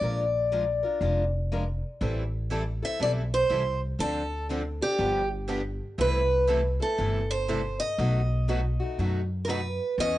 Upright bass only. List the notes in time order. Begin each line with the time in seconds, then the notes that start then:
0.01 A#1
1.01 F1
2.01 A1
3.00 B1
3.50 C2
3.99 D2
4.99 G1
5.98 C2
6.98 G1
7.98 B1
8.98 F#2
9.98 E2